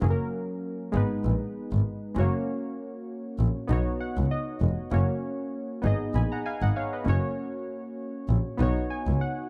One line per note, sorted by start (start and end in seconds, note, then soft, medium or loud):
0.01 0.11 F#1 loud
0.01 0.94 F#3 medium
0.01 0.94 A#3 medium
0.01 0.95 C#4 medium
0.01 0.10 G#4 medium
0.10 0.98 A#4 medium
0.92 1.02 G#1 loud
0.92 2.13 G#3 medium
0.92 2.14 B3 medium
0.92 2.15 D#4 medium
0.97 2.16 B4 medium
1.25 1.33 A#1 loud
1.72 1.80 G#1 medium
2.14 2.25 F#1 medium
2.14 2.23 G#3 medium
2.14 3.67 C#4 medium
2.14 3.67 F#4 medium
2.19 3.69 A#3 medium
2.19 3.68 C#5 medium
3.39 3.47 A#1 medium
3.67 3.78 B1 loud
3.67 4.89 B3 medium
3.67 4.90 D#4 medium
3.67 4.90 F#4 medium
3.73 4.91 C#5 medium
4.00 4.29 F#5 medium
4.17 4.25 C#2 medium
4.31 4.88 D#5 medium
4.62 4.70 F1 medium
4.91 5.00 F#1 loud
4.91 5.84 A#3 medium
4.91 5.84 C#4 medium
4.91 5.84 F#4 medium
4.91 5.85 C#5 medium
5.82 5.92 G#1 loud
5.82 7.03 B3 medium
5.82 7.04 D#4 medium
5.82 7.05 G#4 medium
5.87 6.15 D#5 medium
6.15 6.23 A#1 loud
6.15 6.31 G#5 medium
6.15 6.31 B5 medium
6.32 6.45 F#5 medium
6.32 6.45 A#5 medium
6.46 6.62 F5 medium
6.46 6.62 G#5 medium
6.62 6.70 G#1 medium
6.62 6.76 D#5 medium
6.62 6.75 F#5 medium
6.76 6.92 C#5 medium
6.76 6.92 F5 medium
6.93 7.22 B4 medium
6.93 7.22 D#5 medium
7.04 7.15 F#1 loud
7.04 8.55 A#3 medium
7.04 8.56 C#4 medium
7.04 8.57 F#4 medium
7.09 8.58 C#5 medium
8.29 8.37 A#1 medium
8.57 8.68 B1 loud
8.57 9.49 B3 medium
8.57 9.49 D#4 medium
8.57 9.49 F#4 medium
8.62 9.49 C#5 medium
8.90 9.19 G#5 medium
9.07 9.15 C#2 medium
9.21 9.49 F#5 medium